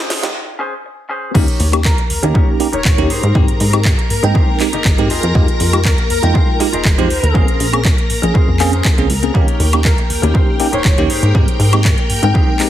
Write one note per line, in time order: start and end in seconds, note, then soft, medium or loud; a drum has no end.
0.00 0.28 C#4 medium
0.00 0.35 D#4 medium
0.00 0.29 G#4 medium
0.00 0.29 C5 loud
0.00 0.35 D#5 medium
0.10 snare loud
0.10 open hi-hat loud
0.22 0.33 A#1 medium
0.22 0.29 G#3 medium
0.22 0.29 D#4 medium
0.22 0.29 F4 medium
0.22 0.29 G4 medium
0.22 snare medium
0.22 closed hi-hat medium
0.59 0.73 C#4 loud
0.59 0.73 G#4 loud
0.59 0.73 C5 loud
0.84 muted clean electric guitar stroke soft
1.09 1.34 C#4 medium
1.09 1.34 G#4 medium
1.09 1.35 C5 loud
1.34 1.46 D#2 loud
1.34 1.45 A#3 medium
1.34 1.45 C#4 medium
1.34 1.66 D#4 loud
1.34 1.45 D#4 medium
1.34 1.66 G4 loud
1.34 1.45 G4 loud
1.34 9.34 A#4 medium
1.34 1.67 A#4 loud
1.34 1.67 C#5 loud
1.34 9.36 A#5 medium
1.34 kick loud
1.34 crash loud
1.48 closed hi-hat medium
1.60 1.94 D#2 medium
1.60 open hi-hat loud
1.72 1.78 A#3 medium
1.72 1.79 C#4 medium
1.72 1.79 D#4 medium
1.72 1.79 G4 medium
1.72 closed hi-hat medium
1.72 high woodblock medium
1.85 1.97 A#4 loud
1.85 kick loud
1.85 clap loud
1.97 muted clean electric guitar stroke soft
1.97 closed hi-hat soft
2.10 2.20 D#2 soft
2.10 open hi-hat medium
2.23 2.33 D#2 medium
2.23 2.57 A#3 medium
2.23 2.57 C#4 medium
2.23 2.57 D#4 medium
2.23 2.57 G4 medium
2.23 muted clean electric guitar stroke medium
2.23 closed hi-hat medium
2.34 2.48 D#4 medium
2.34 2.48 G4 medium
2.34 2.48 A#4 medium
2.34 2.49 C#5 medium
2.34 kick loud
2.59 2.66 A#3 medium
2.59 2.66 C#4 medium
2.59 2.66 D#4 medium
2.59 2.67 G4 medium
2.59 muted clean electric guitar stroke soft
2.59 open hi-hat loud
2.72 2.83 D#1 soft
2.72 3.04 D#4 medium
2.72 3.04 G4 medium
2.72 3.04 A#4 medium
2.72 3.15 C#5 loud
2.72 3.05 C#5 medium
2.72 closed hi-hat medium
2.85 2.96 D#1 medium
2.85 kick loud
2.85 clap loud
2.98 3.08 D#2 medium
2.98 3.07 A#3 loud
2.98 3.07 C#4 medium
2.98 3.07 D#4 medium
2.98 3.07 G4 loud
2.98 closed hi-hat medium
3.10 3.80 D#4 medium
3.10 3.80 G4 medium
3.10 3.81 G#4 medium
3.10 3.81 C5 loud
3.10 open hi-hat medium
3.23 3.33 G#2 loud
3.23 closed hi-hat medium
3.35 3.46 G#2 loud
3.35 3.45 G#3 medium
3.35 3.45 C4 medium
3.35 3.45 D#4 medium
3.35 3.46 G4 loud
3.35 kick loud
3.48 3.58 G#2 soft
3.48 closed hi-hat medium
3.60 3.94 G#2 medium
3.60 open hi-hat loud
3.73 3.79 G#3 medium
3.73 3.79 C4 medium
3.73 3.79 D#4 medium
3.73 3.79 G4 medium
3.73 closed hi-hat medium
3.73 high woodblock medium
3.85 kick loud
3.85 clap loud
3.98 muted clean electric guitar stroke soft
3.98 closed hi-hat soft
4.10 4.20 G#2 soft
4.10 open hi-hat medium
4.23 4.33 G#2 medium
4.23 4.57 G#3 medium
4.23 4.57 C4 medium
4.23 4.57 D#4 medium
4.23 4.58 G5 medium
4.23 muted clean electric guitar stroke medium
4.23 closed hi-hat medium
4.35 4.48 D#4 medium
4.35 4.48 G4 medium
4.35 4.48 G#4 medium
4.35 4.49 C5 loud
4.35 kick loud
4.60 4.66 G#3 medium
4.60 4.67 C4 medium
4.60 4.67 D#4 medium
4.60 4.67 G4 loud
4.60 muted clean electric guitar stroke soft
4.60 clap medium
4.60 open hi-hat loud
4.73 4.83 G#1 soft
4.73 5.04 D#4 medium
4.73 5.04 G4 medium
4.73 5.04 G#4 medium
4.73 5.05 D#5 loud
4.73 closed hi-hat medium
4.85 4.96 G#1 medium
4.85 kick loud
4.85 clap loud
4.98 5.08 G#2 medium
4.98 5.07 G#3 loud
4.98 5.07 C4 medium
4.98 5.08 D#4 medium
4.98 5.08 G4 loud
4.98 closed hi-hat medium
5.09 5.21 F2 soft
5.09 5.80 F4 medium
5.09 5.80 G4 medium
5.09 5.80 G#4 medium
5.09 5.81 D#5 loud
5.09 open hi-hat medium
5.23 5.33 F2 loud
5.23 closed hi-hat medium
5.35 5.46 F2 loud
5.35 5.45 G#3 loud
5.35 5.45 D#4 medium
5.35 5.45 F4 medium
5.35 5.45 G4 loud
5.35 kick loud
5.48 closed hi-hat medium
5.60 5.94 F2 medium
5.60 open hi-hat loud
5.73 5.79 G#3 medium
5.73 5.79 D#4 medium
5.73 5.79 F4 medium
5.73 5.79 G4 medium
5.73 closed hi-hat medium
5.73 high woodblock medium
5.85 5.97 A#4 medium
5.85 kick loud
5.85 clap loud
5.98 muted clean electric guitar stroke soft
5.98 closed hi-hat soft
6.10 6.21 F2 soft
6.10 6.22 A#4 medium
6.10 open hi-hat loud
6.23 6.33 F2 medium
6.23 6.57 G#3 medium
6.23 6.57 D#4 medium
6.23 6.57 F4 medium
6.23 6.57 G5 medium
6.23 muted clean electric guitar stroke medium
6.23 closed hi-hat medium
6.34 6.48 F4 medium
6.34 6.48 G4 medium
6.34 6.48 G#4 medium
6.34 6.49 F5 loud
6.34 kick loud
6.59 6.66 G#3 medium
6.59 6.66 D#4 medium
6.59 6.67 F4 medium
6.59 6.67 G4 loud
6.59 muted clean electric guitar stroke soft
6.59 open hi-hat loud
6.73 6.83 F1 soft
6.73 7.04 F4 medium
6.73 7.04 G4 medium
6.73 7.04 G#4 medium
6.73 7.05 D#5 loud
6.73 closed hi-hat medium
6.85 6.96 F1 medium
6.85 kick loud
6.85 clap loud
6.98 7.08 F2 medium
6.98 7.07 G#3 loud
6.98 7.07 D#4 medium
6.98 7.07 F4 medium
6.98 7.08 G4 loud
6.98 7.35 C5 medium
6.98 closed hi-hat medium
7.10 7.21 D#2 soft
7.10 open hi-hat loud
7.23 7.33 D#2 loud
7.23 closed hi-hat medium
7.34 7.46 A#1 loud
7.34 7.45 A#3 medium
7.34 7.45 C4 medium
7.34 7.66 C#4 loud
7.34 7.45 C#4 medium
7.34 7.66 G#4 loud
7.34 7.45 G#4 loud
7.34 7.67 A#4 loud
7.34 7.67 C5 loud
7.34 kick loud
7.48 closed hi-hat medium
7.60 7.94 A#1 medium
7.60 open hi-hat loud
7.73 7.79 A#3 medium
7.73 7.79 C4 medium
7.73 7.79 C#4 medium
7.73 7.79 G#4 medium
7.73 closed hi-hat medium
7.73 high woodblock medium
7.85 kick loud
7.85 clap loud
7.97 muted clean electric guitar stroke soft
7.97 closed hi-hat soft
8.10 8.20 A#1 soft
8.10 open hi-hat loud
8.22 8.33 A#1 medium
8.22 8.57 A#3 medium
8.22 8.57 C#4 medium
8.22 8.57 G#4 medium
8.22 muted clean electric guitar stroke medium
8.22 closed hi-hat medium
8.34 8.48 C#4 medium
8.34 8.48 G#4 medium
8.34 8.48 A#4 medium
8.34 8.48 C5 loud
8.34 kick loud
8.48 8.81 F2 medium
8.59 8.70 A#3 loud
8.59 8.70 C4 medium
8.59 8.70 C#4 medium
8.59 8.70 G#4 loud
8.59 muted clean electric guitar stroke soft
8.59 clap medium
8.59 open hi-hat loud
8.72 9.04 C#4 medium
8.72 9.04 G#4 medium
8.72 9.04 A#4 medium
8.72 9.04 C5 medium
8.72 closed hi-hat medium
8.85 kick loud
8.85 clap loud
8.98 9.08 C#2 medium
8.98 9.07 A#3 medium
8.98 9.07 C4 medium
8.98 9.08 C#4 medium
8.98 9.08 G#4 loud
8.98 closed hi-hat medium
9.10 9.31 C#2 medium
9.10 open hi-hat loud
9.23 9.32 A#3 medium
9.23 9.32 C4 medium
9.23 9.32 C#4 medium
9.23 9.32 G#4 medium
9.23 closed hi-hat medium
9.34 9.46 D#2 loud
9.34 9.45 A#3 medium
9.34 9.45 C#4 medium
9.34 9.66 D#4 loud
9.34 9.45 D#4 medium
9.34 9.66 G4 loud
9.34 9.45 G4 loud
9.34 9.67 A#4 loud
9.34 12.70 A#4 medium
9.34 9.67 C#5 loud
9.34 12.70 G5 medium
9.34 kick loud
9.48 closed hi-hat medium
9.60 9.94 D#2 medium
9.60 open hi-hat loud
9.73 9.79 A#3 medium
9.73 9.79 C#4 medium
9.73 9.79 D#4 medium
9.73 9.79 G4 medium
9.73 closed hi-hat medium
9.73 high woodblock medium
9.85 9.97 A#4 medium
9.85 kick loud
9.85 clap loud
9.97 muted clean electric guitar stroke soft
9.97 closed hi-hat soft
10.10 10.20 D#2 soft
10.10 open hi-hat medium
10.22 10.33 D#2 medium
10.22 10.57 A#3 medium
10.22 10.57 C#4 medium
10.22 10.57 D#4 medium
10.22 10.57 G4 medium
10.22 muted clean electric guitar stroke medium
10.22 closed hi-hat medium
10.34 10.48 D#4 medium
10.34 10.48 G4 medium
10.34 10.48 A#4 medium
10.34 10.48 C5 loud
10.34 kick loud
10.59 10.66 A#3 medium
10.59 10.66 C#4 medium
10.59 10.66 D#4 medium
10.59 10.67 G4 loud
10.59 muted clean electric guitar stroke soft
10.59 open hi-hat loud
10.72 10.82 D#1 soft
10.72 11.04 D#4 medium
10.72 11.04 G4 medium
10.72 11.04 A#4 medium
10.72 11.05 C5 loud
10.72 11.15 C#5 medium
10.72 closed hi-hat medium
10.85 10.96 D#1 medium
10.85 kick loud
10.85 clap loud
10.98 11.08 D#2 medium
10.98 11.07 A#3 loud
10.98 11.07 C#4 medium
10.98 11.07 D#4 medium
10.98 11.08 G4 loud
10.98 closed hi-hat soft
11.09 11.20 G#2 soft
11.09 11.80 D#4 loud
11.09 11.80 G4 medium
11.09 11.80 G#4 medium
11.09 11.81 C5 loud
11.09 open hi-hat loud
11.22 11.32 G#2 loud
11.22 closed hi-hat medium
11.35 11.46 G#2 loud
11.35 11.45 G#3 medium
11.35 11.45 C4 medium
11.35 11.45 D#4 medium
11.35 11.45 G4 loud
11.35 kick loud
11.48 11.57 G#2 soft
11.48 closed hi-hat medium
11.59 11.94 G#2 medium
11.59 open hi-hat loud
11.73 11.79 G#3 medium
11.73 11.79 C4 medium
11.73 11.79 D#4 medium
11.73 11.79 G4 medium
11.73 closed hi-hat medium
11.73 high woodblock medium
11.84 kick loud
11.84 clap loud
11.98 muted clean electric guitar stroke soft
11.98 closed hi-hat soft
12.10 12.20 G#2 soft
12.10 open hi-hat medium
12.23 12.33 G#2 medium
12.23 12.57 G#3 medium
12.23 12.57 C4 medium
12.23 12.57 D#4 medium
12.23 12.58 G5 medium
12.23 muted clean electric guitar stroke medium
12.23 closed hi-hat medium
12.34 12.48 D#4 medium
12.34 12.48 G4 medium
12.34 12.48 G#4 medium
12.34 12.49 C5 loud
12.34 kick loud
12.59 12.66 G#3 medium
12.59 12.66 C4 medium
12.59 12.66 D#4 medium
12.59 12.67 G4 loud
12.59 muted clean electric guitar stroke soft
12.59 clap medium
12.59 open hi-hat loud